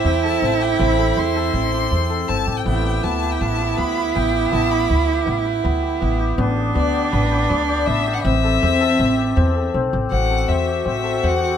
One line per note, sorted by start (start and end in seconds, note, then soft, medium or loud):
0.00 2.47 E4 loud
0.00 0.60 G4 medium
0.00 0.23 A4 medium
0.04 0.37 E2 medium
0.04 0.42 C4 medium
0.04 0.24 G5 medium
0.24 0.98 A4 medium
0.24 0.63 A5 medium
0.42 0.74 A1 medium
0.42 0.79 C4 medium
0.60 1.72 G4 medium
0.60 0.82 G5 medium
0.79 1.12 A1 medium
0.79 1.16 C4 medium
0.79 1.20 B5 medium
0.98 1.35 A4 medium
1.17 1.49 E2 medium
1.17 1.54 C4 medium
1.17 2.30 C6 medium
1.36 2.09 A4 medium
1.54 1.86 A1 medium
1.54 1.91 C4 medium
1.73 2.46 G4 medium
1.91 2.23 E2 medium
1.91 2.28 C4 medium
2.10 5.03 A4 medium
2.28 2.46 G1 medium
2.28 2.71 C4 medium
2.28 2.58 A5 medium
2.47 2.64 A1 medium
2.47 2.83 G4 medium
2.57 2.66 G5 medium
2.65 2.98 A1 medium
2.65 3.02 B3 medium
2.65 6.40 E4 loud
2.65 3.05 G5 medium
2.84 3.21 G4 medium
3.03 3.36 D2 medium
3.03 3.39 B3 medium
3.03 3.33 A5 medium
3.21 3.57 G4 medium
3.31 3.43 G5 medium
3.40 3.73 A1 medium
3.40 3.76 B3 medium
3.40 3.79 A5 medium
3.58 3.95 G4 medium
3.77 4.10 D2 medium
3.77 4.15 B3 medium
3.77 4.17 B5 medium
3.96 4.33 G4 medium
4.15 4.48 A1 medium
4.15 4.51 B3 medium
4.15 4.51 G5 medium
4.33 4.69 G4 medium
4.51 4.85 A1 medium
4.51 4.88 B3 medium
4.51 4.73 A5 medium
4.69 5.06 G4 medium
4.69 5.08 B5 medium
4.89 5.22 D2 medium
4.89 5.25 B3 medium
5.07 5.44 G4 medium
5.25 5.59 A1 medium
5.25 5.63 B3 medium
5.45 5.82 G4 medium
5.64 5.97 D2 medium
5.64 6.00 B3 medium
5.83 6.19 G4 medium
6.01 6.34 A1 medium
6.01 6.37 B3 medium
6.19 6.56 G4 medium
6.38 6.71 A1 medium
6.38 6.74 B3 medium
6.38 8.26 D4 loud
6.57 6.93 G4 medium
6.75 7.08 D2 medium
6.75 7.11 B3 medium
6.75 7.14 D5 medium
6.93 7.31 G4 medium
7.12 7.45 A1 medium
7.12 7.49 B3 medium
7.12 7.51 B4 medium
7.31 7.68 G4 medium
7.50 7.83 D2 medium
7.50 7.87 B3 medium
7.50 7.88 D5 medium
7.69 8.06 G4 medium
7.86 8.20 A1 medium
7.86 8.32 B3 medium
7.86 8.15 E5 medium
8.07 9.17 G4 medium
8.13 8.22 F#5 medium
8.22 8.57 A1 loud
8.22 9.93 C4 medium
8.22 8.62 C4 medium
8.22 9.69 E5 loud
8.44 8.80 A4 medium
8.63 8.95 E2 medium
8.63 8.98 C4 medium
8.80 9.55 A4 medium
8.99 9.32 A1 medium
8.99 9.36 C4 medium
9.17 9.92 G4 medium
9.36 9.69 E2 medium
9.36 9.73 C4 medium
9.56 10.29 A4 medium
9.74 9.91 B1 medium
9.74 10.11 C4 medium
9.93 10.10 A1 medium
9.93 10.66 G4 medium
10.11 10.44 A1 medium
10.11 10.47 C4 medium
10.11 11.57 F#4 medium
10.11 10.50 F#5 medium
10.30 11.03 A4 medium
10.48 10.81 E2 medium
10.48 10.84 C4 medium
10.48 10.86 E5 medium
10.67 11.40 G4 medium
10.85 11.18 A1 medium
10.85 11.22 C4 medium
10.85 11.26 E5 medium
11.03 11.57 A4 medium
11.22 11.56 E2 medium
11.22 11.57 C4 medium
11.22 11.57 F#5 medium
11.41 11.57 G4 medium